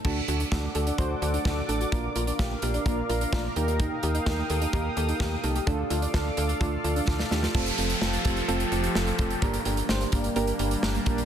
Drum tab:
CC |x---------------|----------------|----------------|----------------|
HH |--xx--xxx-xx--xx|x-xx--xxx-xx--xx|x-xx--xxx-xx--xx|x-xx--xxx-xx----|
SD |----o-------o---|----o-------o---|----o-------o---|----o-------oooo|
BD |o---o---o---o---|o---o---o---o---|o---o---o---o---|o---o---o---o---|

CC |x---------------|----------------|
HH |-xxx-xxxxxxx-xxx|xxxx-xxxxxxx-xxx|
SD |----o-------o---|----o-------o---|
BD |o-----o-------o-|o-----o-------o-|